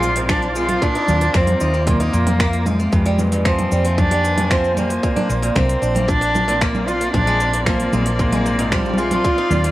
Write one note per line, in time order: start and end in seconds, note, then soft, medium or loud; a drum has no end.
0.00 0.76 A#1 medium
0.00 0.15 G#2 medium
0.00 3.77 C4 medium
0.00 0.26 F4 loud
0.00 3.77 F4 medium
0.00 3.77 A#4 medium
0.00 3.77 D5 medium
0.00 shaker medium
0.16 0.28 G#2 medium
0.16 open hi-hat medium
0.16 shaker soft
0.29 0.55 F3 loud
0.29 0.54 D4 medium
0.29 finger snap loud
0.29 kick loud
0.29 low conga medium
0.29 shaker soft
0.42 shaker soft
0.55 0.68 G#3 medium
0.55 0.84 F4 loud
0.55 shaker medium
0.69 0.81 F3 medium
0.69 open hi-hat medium
0.69 low conga medium
0.69 shaker soft
0.82 0.94 A#2 loud
0.82 1.37 D4 loud
0.82 kick loud
0.82 shaker soft
0.95 1.07 D#4 loud
0.95 open hi-hat soft
1.08 1.27 D#2 medium
1.08 1.20 A#2 medium
1.08 low conga medium
1.08 shaker medium
1.21 1.33 A#2 medium
1.21 open hi-hat soft
1.21 shaker soft
1.34 1.54 F2 loud
1.34 1.60 A#3 loud
1.34 1.87 C4 loud
1.34 finger snap medium
1.34 kick loud
1.34 shaker soft
1.47 open hi-hat soft
1.47 low conga medium
1.47 shaker soft
1.60 2.13 D#2 medium
1.60 1.73 D#4 medium
1.60 shaker medium
1.74 1.86 A#3 medium
1.74 shaker soft
1.87 1.99 A#2 loud
1.87 2.69 A#3 loud
1.87 kick loud
1.87 open hi-hat soft
1.87 low conga medium
1.87 shaker soft
2.00 2.12 D#4 medium
2.00 open hi-hat soft
2.00 shaker soft
2.13 2.87 F2 medium
2.13 2.25 A#2 medium
2.13 shaker medium
2.27 2.39 A#2 medium
2.27 open hi-hat medium
2.27 low conga medium
2.27 shaker soft
2.40 2.65 A#3 medium
2.40 finger snap loud
2.40 kick loud
2.40 shaker soft
2.53 open hi-hat soft
2.53 shaker soft
2.66 3.47 G#3 loud
2.66 2.78 D#4 medium
2.66 low conga medium
2.66 shaker medium
2.80 2.91 A#3 medium
2.80 shaker soft
2.92 3.66 F2 medium
2.92 3.04 G2 loud
2.92 5.88 A#3 medium
2.92 kick loud
2.92 shaker soft
3.06 3.18 G3 loud
3.06 open hi-hat soft
3.14 5.03 D#3 medium
3.19 3.31 G2 medium
3.19 low conga medium
3.19 shaker medium
3.32 3.44 G2 loud
3.32 open hi-hat medium
3.32 shaker soft
3.37 5.75 G#5 medium
3.45 3.70 F3 medium
3.45 3.99 C4 medium
3.45 finger snap medium
3.45 kick loud
3.45 shaker soft
3.59 open hi-hat soft
3.59 low conga medium
3.59 shaker soft
3.72 4.98 F2 medium
3.72 3.84 G3 medium
3.72 shaker medium
3.85 3.97 F3 medium
3.85 5.88 C5 medium
3.85 open hi-hat soft
3.85 shaker soft
3.98 4.10 G2 medium
3.98 4.52 D4 loud
3.98 kick loud
3.98 low conga medium
3.98 shaker soft
4.11 4.23 G3 medium
4.11 open hi-hat soft
4.24 4.36 G2 medium
4.24 shaker medium
4.37 4.49 G2 medium
4.37 open hi-hat medium
4.37 low conga medium
4.37 shaker soft
4.50 4.76 F3 loud
4.50 4.77 C4 loud
4.50 finger snap loud
4.50 kick loud
4.50 shaker soft
4.64 shaker soft
4.77 4.89 G3 medium
4.77 5.57 A#3 medium
4.77 low conga medium
4.77 shaker medium
4.90 5.02 F3 medium
4.90 open hi-hat medium
4.90 shaker soft
5.03 5.15 A#2 loud
5.03 9.71 C4 medium
5.03 kick loud
5.03 shaker soft
5.16 5.28 D4 loud
5.16 open hi-hat soft
5.16 low conga medium
5.29 5.49 A#1 medium
5.29 5.41 A#2 medium
5.29 shaker medium
5.42 5.54 A#2 loud
5.42 9.71 F4 medium
5.42 open hi-hat medium
5.42 shaker soft
5.55 5.75 C2 loud
5.55 5.81 A#3 loud
5.55 6.10 C4 medium
5.55 finger snap medium
5.55 kick loud
5.55 low conga medium
5.55 shaker soft
5.69 open hi-hat soft
5.69 shaker soft
5.82 7.08 A#1 medium
5.82 5.94 D4 medium
5.82 shaker medium
5.95 6.07 A#3 medium
5.95 9.71 A#4 medium
5.95 9.71 D5 medium
5.95 open hi-hat medium
5.95 low conga medium
5.95 shaker soft
6.08 6.20 A#2 medium
6.08 6.63 D4 loud
6.08 kick loud
6.08 shaker soft
6.21 6.33 D4 loud
6.21 open hi-hat soft
6.34 6.47 A#2 medium
6.34 low conga medium
6.34 shaker medium
6.48 6.60 A#2 loud
6.48 open hi-hat medium
6.48 shaker soft
6.61 6.86 A#3 loud
6.61 6.89 A#3 medium
6.61 finger snap loud
6.61 kick loud
6.61 shaker soft
6.75 low conga medium
6.75 shaker soft
6.87 6.99 D4 medium
6.87 7.13 F4 loud
6.87 shaker medium
7.01 7.13 A#3 medium
7.01 open hi-hat medium
7.01 shaker soft
7.14 7.87 A#1 medium
7.14 7.26 G#2 loud
7.14 7.63 D4 loud
7.14 kick loud
7.14 low conga medium
7.14 shaker soft
7.27 7.39 G#3 loud
7.27 open hi-hat soft
7.40 7.53 G#2 medium
7.40 shaker medium
7.54 7.65 G#2 loud
7.54 open hi-hat medium
7.54 shaker soft
7.66 7.92 F3 loud
7.66 8.15 A#3 medium
7.66 finger snap loud
7.66 kick loud
7.66 low conga medium
7.66 shaker soft
7.80 open hi-hat soft
7.80 shaker soft
7.93 9.19 A#1 medium
7.93 8.05 G#3 medium
7.93 low conga medium
7.93 shaker medium
8.06 8.18 F3 medium
8.06 open hi-hat medium
8.06 shaker soft
8.19 8.31 G#2 loud
8.19 8.73 A#3 loud
8.19 kick loud
8.19 shaker soft
8.32 8.44 G#3 medium
8.32 open hi-hat soft
8.32 low conga medium
8.46 8.58 G#2 medium
8.46 shaker medium
8.59 8.70 G#2 loud
8.59 open hi-hat medium
8.59 shaker soft
8.72 8.97 F3 medium
8.72 8.99 G3 medium
8.72 finger snap medium
8.72 kick loud
8.72 low conga soft
8.72 shaker soft
8.76 low conga soft
8.81 low conga medium
8.85 low conga medium
8.85 shaker soft
8.89 low conga medium
8.94 9.71 F4 loud
8.94 low conga medium
8.98 9.10 G#3 medium
8.98 shaker medium
9.11 9.23 F3 medium
9.11 open hi-hat medium
9.11 low conga medium
9.11 shaker soft
9.25 9.36 A#2 loud
9.25 kick loud
9.25 shaker soft
9.38 9.50 D#4 loud
9.51 9.70 D#2 loud
9.51 9.63 A#2 medium
9.51 low conga medium
9.51 shaker medium
9.64 9.71 A#2 loud
9.64 open hi-hat medium
9.64 shaker soft